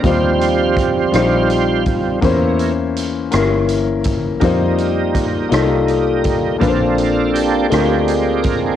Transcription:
<<
  \new Staff \with { instrumentName = "Grand piano" } { \time 6/8 \key bes \major \tempo 4. = 55 <ees g ees' f' c''>4. <g ees' f' c''>4. | <e bes des' e' c''>4. <bes des' e' bes'>4. | <bes ees' f' c''>4. <bes ees' f' a'>4. | <bes, bes d' a' ces'' c''>4. <d aes d' f' bes'>4. | }
  \new Staff \with { instrumentName = "Tonewheel organ" } { \time 6/8 \key bes \major c''2~ c''8 r8 | r2. | r2. | f'4 g'8 g'4 bes'8 | }
  \new Staff \with { instrumentName = "Tonewheel organ" } { \time 6/8 \key bes \major <f g c' f' g'>2~ <f g c' f' g'>8 <f g c'>8 | <e bes des'>8 r2 r8 | <g bes ees'>2. | <bes c' d' a'>4. <aes bes c' d'>4. | }
  \new Staff \with { instrumentName = "Fingered electric bass" } { \clef bass \time 6/8 \key bes \major ees,4. bes,,4. | e,4. g,,4. | f,4. c,4. | bes,,4. d,4. | }
  \new DrumStaff \with { instrumentName = "Drums" } \drummode { \time 6/8 <hh bd>8 hh8 <hh bd ss>8 <hh ss>8 hh8 <hh bd>8 | <hh bd>8 hh8 hh8 <hh ss>8 hh8 <hh bd>8 | <hh bd>8 hh8 <hh bd ss>8 <hh ss>8 hh8 <hh bd>8 | <hh bd>8 hh8 hh8 <hh ss>8 hh8 <hh bd>8 | }
>>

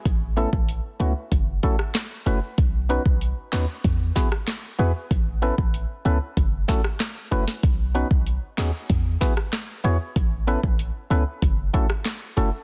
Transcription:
<<
  \new Staff \with { instrumentName = "Synth stab" } { \time 4/4 \key e \major \tempo 4 = 95 r8 <a b cis' e' a'>8 r8 <a b cis' e' fis'>8 r8 <a cis' e' fis' a'>8 r8 <a cis' e' fis' b'>8 | r8 <b cis' dis' fis' b'>8 r8 <b cis' dis' fis' b'>8 r8 <b e' fis' gis' b'>8 r8 <b e' fis' gis' b'>8 | r8 <b cis' e' a' b'>8 r8 <b cis' e' a' b'>8 r8 <a cis' e' fis' a'>8 r8 <a cis' e' fis' b'>8 | r8 <b cis' dis' fis' b'>8 r8 <b cis' dis' fis' gis'>8 r8 <b e' fis' gis' b'>8 r8 <b e' fis' gis' cis''>8 |
r8 <b cis' e' a' b'>8 r8 <b cis' e' a' b'>8 r8 <a cis' e' fis' a'>8 r8 <a cis' e' fis' a'>8 | }
  \new Staff \with { instrumentName = "808-style bass" } { \clef bass \time 4/4 \key e \major a,,8. a,,8 r16 cis,16 r16 fis,,8 r4 fis,,16 r16 | b,,8. b,,8 r16 dis,16 r16 e,8 r4 e,16 r16 | a,,8. a,,8 r16 cis,16 r16 fis,,8 r4 fis,,16 r16 | b,,8. b,,8 r16 dis,16 r16 e,8 r4 e,16 r16 |
a,,8. a,,8 r16 cis,16 r16 fis,,8 r4 fis,,16 r16 | }
  \new DrumStaff \with { instrumentName = "Drums" } \drummode { \time 4/4 <hh bd>8 hh16 bd16 hh8 hh8 <hh bd>8 <hh bd>16 ss16 <hc hh sn>8 hh8 | <hh bd>8 hh16 bd16 hh8 <hc hh sn>8 <hh bd>8 <hh bd sn>16 ss16 <hc hh sn>8 hh8 | <hh bd>8 hh16 bd16 hh8 hh8 <hh bd>8 <hh bd sn>16 ss16 <hc hh sn>8 hh16 sn16 | <hh bd>8 hh16 bd16 hh8 <hc hh sn>8 <hh bd>8 <hh bd sn>16 ss16 <hc hh sn>8 hh8 |
<hh bd>8 hh16 bd16 hh8 hh8 <hh bd>8 <hh bd>16 ss16 <hc hh sn>8 hh8 | }
>>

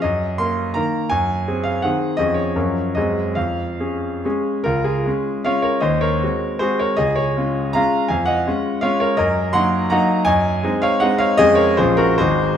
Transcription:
\new Staff \with { instrumentName = "Grand piano" } { \time 3/4 \key des \major \tempo 4 = 160 << { ees''4 c'''4 bes''4 | aes''4. f''8 ges''4 | ees''8 des''4. ees''4 | f''2~ f''8 r8 |
<f' bes'>8 <f' aes'>4. <des'' f''>8 <bes' des''>8 | <c'' ees''>8 <bes' des''>4. <aes' c''>8 <bes' des''>8 | <aes' ees''>8 <aes' des''>4. <f'' bes''>4 | <f'' aes''>8 <ees'' ges''>4. <des'' f''>8 <bes' des''>8 |
<bes' ees''>4 <ges'' c'''>4 <ges'' bes''>4 | <ees'' aes''>4. <des'' f''>8 <ees'' ges''>8 <des'' f''>8 | <aes' ees''>8 <bes' des''>8 <aes' c''>8 <ges' bes'>8 <aes' c''>4 | } \\ { ges,4 <bes bes'>4 <ees bes bes'>4 | ges,4 <c' aes'>4 <ees c' aes'>4 | <f, f des' aes'>4 <ges, f des' bes'>4 <ges, aes c' aes'>4 | f,4 <des' aes'>4 <aes des' aes'>4 |
des,4 <aes des' f'>4 <aes des' f'>4 | ees,4 <aes c' ges'>4 <aes c' ges'>4 | des,4 <aes des' f'>4 <aes des' f'>4 | f,4 <aes des' f'>4 <aes des' f'>4 |
ges,4 <ges bes ees'>4 <ges bes ees'>4 | ges,4 <aes c' ees'>4 <aes c' ees'>4 | <f, aes des' f'>4 <bes,, f des' f'>4 <aes,, aes ees' ges'>4 | } >> }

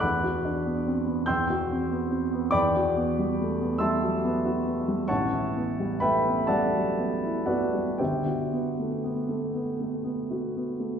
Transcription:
<<
  \new Staff \with { instrumentName = "Grand piano" } { \time 6/8 \key e \minor \tempo 4. = 45 <fis'' b'' d''' fis'''>4. <g'' c''' e''' g'''>4. | <d'' g'' b'' d'''>4. <e'' a'' c''' e'''>8 r4 | <cis'' fis'' a'' cis'''>4 <b' e'' g'' b''>8 <a' d'' fis'' a''>4 <fis' b' d'' fis''>8 | <g' c'' e'' g''>4. r4. | }
  \new Staff \with { instrumentName = "Grand piano" } { \time 6/8 \key e \minor e,16 fis'16 d'16 b16 c'16 b16 e,16 fis'16 c'16 b16 c'16 b16 | e,16 fis'16 b16 g16 a16 b16 g16 fis16 b16 fis'16 b16 g16 | a,,16 e'16 b16 g16 a16 b16 g16 fis16 b16 e'16 b16 g16 | g,,16 fis'16 b16 a16 b16 a16 b16 a16 b16 fis'16 b16 a16 | }
>>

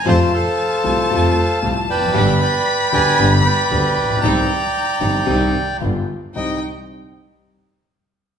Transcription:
<<
  \new Staff \with { instrumentName = "Violin" } { \time 4/4 \key c \minor \tempo 4 = 115 a''1 | b''1 | bes''2. r4 | g''8 r2. r8 | }
  \new Staff \with { instrumentName = "Bandoneon" } { \time 4/4 \key c \minor << { a''8 f''2~ f''8 f''8 g''8~ | g''8 b''4 aes''8. g''16 g''4.~ | g''2. r4 | ees''8 r2. r8 | } \\ { <c'' f''>8 <a' c''>2~ <a' c''>8 r8 <b' d''>8~ | <b' d''>8 <d'' g''>4 <b' d''>4 <b' d''>4.~ | <b' d''>2. r4 | r1 | } >> }
  \new Staff \with { instrumentName = "String section" } { \time 4/4 \key c \minor <a c' f'>8 r4 <a c' f'>8 <a c' f'>8 r8 <a c' f'>8 r8 | <g b d'>8 r4 <g b d'>8 <g b d'>8 r8 <g b d'>8 r8 | <g c' ees'>8 r4 <g c' ees'>8 <g c' ees'>8 r8 <g b f'>8 r8 | <g c' ees'>8 r2. r8 | }
  \new Staff \with { instrumentName = "Grand piano" } { \clef bass \time 4/4 \key c \minor <f, c f a f'>8 r4 <c, c f a f'>8 <f, c f a f'>8 r8 <c, c f a f'>8 r32 e,32 f,32 fis,32 | <g,, g, d g b g'>8 r4 <d, d g b g'>8 <g,, g, d g b g'>8 r8 <d, d g b g'>8 r32 a,,32 bes,,32 b,,32 | <c, c ees g c' g'>8 r4 <g,, g, ees g c' g'>8 <c, c ees g c' g'>8 r8 <g,, g, d g b f'>8 r8 | <c, g c' ees'>8 r2. r8 | }
  \new Staff \with { instrumentName = "Double bass" } { \clef bass \time 4/4 \key c \minor f,8 r4 c,8 f,8 r8 c,8 f,,8 | g,,8 r4 d,8 g,,8 r8 d,8 bes,,8 | c,8 r4 g,,8 c,8 r8 g,,8 r8 | c,8 r2. r8 | }
>>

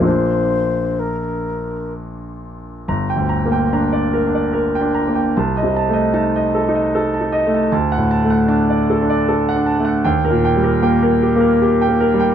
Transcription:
<<
  \new Staff \with { instrumentName = "Flute" } { \time 3/4 \key bes \major \tempo 4 = 75 c''4 bes'4 r4 | \key g \minor r2. | r2. | r2. |
r2. | }
  \new Staff \with { instrumentName = "Grand piano" } { \time 3/4 \key bes \major r2. | \key g \minor bes''16 g''16 bes''16 g''16 bes''16 d''16 bes'16 d''16 bes'16 g''16 bes''16 g''16 | a''16 ees''16 a''16 ees''16 a''16 ees''16 a'16 ees''16 a'16 a''16 ees''16 a''16 | a''16 fis''16 a''16 fis''16 a''16 d''16 a'16 d''16 a'16 fis''16 a''16 fis''16 |
g''16 bes'16 g''16 bes'16 g''16 bes'16 g'16 bes'16 g'16 g''16 bes'16 g''16 | }
  \new Staff \with { instrumentName = "Grand piano" } { \time 3/4 \key bes \major <bes,, bes d' f'>2. | \key g \minor \tuplet 3/2 { g,,8 d,8 bes8 d'4 d'8~ d'8 d'8 bes8 } | \tuplet 3/2 { c,8 c8 a8 ees'4 ees'8~ ees'8 ees'8 a8 } | \tuplet 3/2 { d,8 a,8 a8 d'4 d'8~ d'8 d'8 a8 } |
\tuplet 3/2 { ees,8 bes,8 g8 bes4 bes8~ bes8 bes8 g8 } | }
>>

